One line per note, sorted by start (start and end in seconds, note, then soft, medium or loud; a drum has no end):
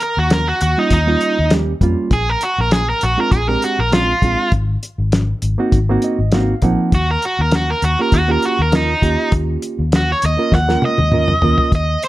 0.00 0.18 A#4 medium
0.00 closed hi-hat medium
0.17 0.51 D#2 medium
0.17 0.32 F#4 medium
0.30 0.48 A#4 medium
0.30 snare loud
0.30 closed hi-hat medium
0.48 0.61 F#4 medium
0.61 0.74 D#2 medium
0.61 0.79 F#4 medium
0.61 closed hi-hat medium
0.77 0.97 G3 medium
0.77 0.97 A#3 medium
0.77 0.97 C#4 medium
0.77 0.92 D#4 medium
0.77 0.97 F4 medium
0.90 1.14 D#2 loud
0.90 1.51 D#4 loud
0.90 kick medium
0.90 closed hi-hat medium
1.07 1.37 G3 medium
1.07 1.37 A#3 medium
1.07 1.37 C#4 medium
1.07 1.37 F4 medium
1.21 closed hi-hat medium
1.39 1.73 D#2 medium
1.50 1.72 G3 medium
1.50 1.72 A#3 medium
1.50 1.72 C#4 medium
1.50 1.73 G4 medium
1.50 snare loud
1.50 closed hi-hat medium
1.81 1.94 F2 medium
1.81 2.12 G3 medium
1.81 2.12 A#3 medium
1.81 2.12 C#4 medium
1.81 2.13 F4 medium
1.81 kick medium
1.81 closed hi-hat medium
2.11 2.35 A#1 medium
2.11 2.30 G#4 medium
2.11 kick loud
2.11 closed hi-hat medium
2.30 2.43 A#4 medium
2.41 2.58 F#4 medium
2.41 closed hi-hat medium
2.58 2.92 A#1 medium
2.58 2.72 A#4 medium
2.71 2.88 G#4 medium
2.71 snare loud
2.71 closed hi-hat medium
2.90 3.03 A#4 medium
3.01 3.15 A#1 medium
3.01 3.18 F#4 medium
3.01 closed hi-hat medium
3.17 3.37 G#3 medium
3.17 3.37 C4 medium
3.17 3.37 D4 medium
3.17 3.38 F4 medium
3.17 3.32 A#4 medium
3.32 3.55 A#1 medium
3.32 3.48 G#4 medium
3.32 kick medium
3.32 closed hi-hat medium
3.48 3.78 G#3 medium
3.48 3.78 C4 medium
3.48 3.78 D4 medium
3.48 3.78 G4 medium
3.48 3.62 A#4 medium
3.62 3.79 F#4 medium
3.62 closed hi-hat medium
3.79 4.13 A#1 medium
3.79 3.93 A#4 medium
3.92 4.12 G#3 medium
3.92 4.13 C4 medium
3.92 4.13 D4 medium
3.92 4.51 F4 medium
3.92 4.13 F4 medium
3.92 snare loud
3.92 closed hi-hat medium
4.22 4.35 A#1 medium
4.22 4.53 G#3 medium
4.22 4.53 C4 medium
4.22 4.53 D4 medium
4.22 4.54 F4 medium
4.22 kick medium
4.22 closed hi-hat medium
4.52 4.75 G#1 medium
4.52 kick loud
4.52 closed hi-hat medium
4.83 closed hi-hat medium
4.98 5.32 G#1 medium
5.12 snare loud
5.12 closed hi-hat medium
5.42 5.55 G#1 medium
5.42 closed hi-hat medium
5.58 5.77 A#3 medium
5.58 5.78 C4 medium
5.58 5.78 D#4 medium
5.58 5.78 F#4 loud
5.72 5.96 G#1 loud
5.72 kick medium
5.72 closed hi-hat medium
5.89 6.18 A#3 medium
5.89 6.19 C4 medium
5.89 6.19 D#4 medium
5.89 6.19 F#4 loud
6.02 6.31 D#5 medium
6.02 closed hi-hat medium
6.19 6.53 G#1 medium
6.32 6.53 A#3 medium
6.32 6.53 C4 medium
6.32 6.54 D#4 medium
6.32 6.54 F#4 loud
6.32 6.61 F5 medium
6.32 snare loud
6.32 closed hi-hat medium
6.62 6.75 A#1 medium
6.62 6.94 F3 loud
6.62 6.93 A#3 medium
6.62 6.93 C4 medium
6.62 6.93 D#4 medium
6.62 6.91 F#5 medium
6.62 kick medium
6.62 closed hi-hat medium
6.92 7.16 D#2 medium
6.92 7.09 F#4 medium
6.92 kick loud
6.92 closed hi-hat medium
7.11 7.23 A#4 medium
7.22 7.39 F#4 medium
7.22 closed hi-hat medium
7.39 7.73 D#2 medium
7.39 7.54 A#4 medium
7.52 7.70 F#4 medium
7.52 snare loud
7.52 closed hi-hat medium
7.70 7.83 A#4 medium
7.82 7.95 D#2 medium
7.82 7.99 F#4 medium
7.82 closed hi-hat medium
7.99 8.18 A#3 medium
7.99 8.18 C#4 medium
7.99 8.18 F4 medium
7.99 8.19 G4 medium
7.99 8.14 A#4 medium
8.12 8.36 D#2 loud
8.12 8.29 F#4 medium
8.12 kick medium
8.12 closed hi-hat medium
8.28 8.58 A#3 medium
8.28 8.58 C#4 medium
8.28 8.58 F4 medium
8.28 8.58 G4 medium
8.28 8.44 A#4 medium
8.42 8.60 F#4 medium
8.42 closed hi-hat medium
8.59 8.93 D#2 medium
8.59 8.74 A#4 medium
8.71 8.92 A#3 medium
8.71 8.93 C#4 medium
8.71 9.32 D#4 medium
8.71 8.93 F4 medium
8.71 8.93 A#4 medium
8.71 snare loud
8.71 closed hi-hat medium
9.02 9.15 D#2 medium
9.02 9.82 A#3 medium
9.02 9.82 C#4 medium
9.02 9.82 F4 medium
9.02 9.82 G4 medium
9.02 kick medium
9.02 closed hi-hat medium
9.32 9.56 D#2 medium
9.32 kick loud
9.32 closed hi-hat medium
9.62 closed hi-hat medium
9.79 10.13 D#2 medium
9.92 10.10 F#4 medium
9.92 snare loud
9.92 closed hi-hat medium
10.12 10.24 C#5 medium
10.22 10.36 D#2 loud
10.22 10.53 D#5 medium
10.22 closed hi-hat medium
10.38 10.57 A#3 medium
10.38 10.57 C#4 medium
10.38 10.58 F4 medium
10.38 10.58 A#4 medium
10.52 10.75 D#2 loud
10.52 10.83 F#5 medium
10.52 kick medium
10.52 snare medium
10.68 10.98 A#3 medium
10.68 10.98 C#4 medium
10.68 10.98 F4 medium
10.68 10.99 A#4 medium
10.68 snare medium
10.82 11.71 D#5 loud
10.82 high tom medium
10.98 11.33 D#2 medium
10.98 high tom medium
11.12 11.33 A#3 medium
11.12 11.33 C#4 medium
11.12 11.33 F4 medium
11.12 11.33 A#4 medium
11.12 mid tom medium
11.28 mid tom medium
11.42 11.55 D#2 medium
11.42 11.72 A#3 medium
11.42 11.73 C#4 medium
11.42 11.73 F4 medium
11.42 11.73 A#4 medium
11.42 floor tom loud
11.58 floor tom medium
11.72 11.96 D#2 medium
11.72 12.04 D#5 loud
11.72 kick loud
11.72 closed hi-hat medium
12.03 12.08 C#5 loud
12.03 closed hi-hat medium